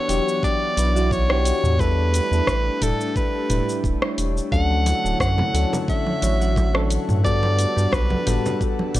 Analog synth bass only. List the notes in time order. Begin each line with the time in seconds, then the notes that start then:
0.09 E1
0.77 B1
1.64 E2
2.31 E2
2.47 A1
2.81 E1
3.50 E1
3.84 D1
4.18 E1
4.52 D2
5.05 D1
5.20 F#2
5.54 D2
6.22 A1
7.09 G2
7.77 G2
7.93 B1
8.27 G1
8.95 G1